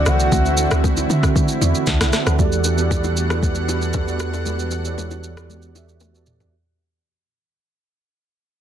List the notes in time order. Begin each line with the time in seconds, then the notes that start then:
Already playing: D3 E3 A3 C4 D4 E4 F#4 D5
0.06 C2 F#5, cross-stick, shaker
0.20 shaker
0.30 D2 D3 C4 E4 F#4 E5, kick, low conga, shaker
0.45 shaker
0.56 D3 C4 E4 F#4 D5, shaker
0.71 D2, cross-stick, shaker
0.84 kick, high bongo, low conga, shaker
0.97 low bongo, shaker
1.08 D3 C4 E4 F#4 E5, low bongo, shaker
1.23 kick, cross-stick, shaker
1.36 D3, kick, low conga, shaker
1.48 shaker
1.61 E2 D5, low bongo, shaker
1.75 shaker
1.86 D2 E5 F#5 A5, kick, snare, high bongo, shaker
2.01 C2 F#5, cross-stick, snare, shaker
2.13 B4 E5 A5, cross-stick, snare, shaker
2.27 D2 A4 D5, cross-stick, shaker
2.37 E2 E3 G3 A3 B3 D4 F#4 G4 A4 D5 F#5, kick, low conga, shaker
2.52 shaker
2.64 high bongo, shaker
2.77 E3 B3 F#4 G4 A4 D5, shaker
2.91 kick, high bongo, low conga, shaker
3.04 low bongo, shaker
3.17 shaker
3.28 E3 B3 F#4 G4 A4 B4, cross-stick, shaker
3.42 kick, low conga, shaker
3.55 shaker
3.66 E3 B3 F#4 G4 A4 B4, low bongo, shaker
3.82 shaker
3.93 kick, high bongo, shaker
4.06 E3 B3 F#4 G4 A4 D5, shaker
4.20 cross-stick, shaker
4.33 high bongo, shaker
4.44 E3 B3 F#4 G4 A4 B4, low conga, shaker
4.59 shaker
4.71 high bongo, shaker
4.83 E3 B3 F#4 G4 A4 C#5, shaker
4.93 D5
4.98 high bongo, low conga, shaker
5.11 low bongo, shaker
5.24 shaker
5.35 E3 B3 F#4 G4 A4 D5, cross-stick, shaker
5.49 low conga, shaker
5.62 shaker
5.73 E3 B3 F#4 G4 A4 E5, low bongo, shaker
5.89 shaker
6.00 high tom, high bongo, shaker
6.13 E3 B3 F#4 G4 A4 D5, shaker
6.27 mid tom, shaker
6.40 floor tom, high bongo, shaker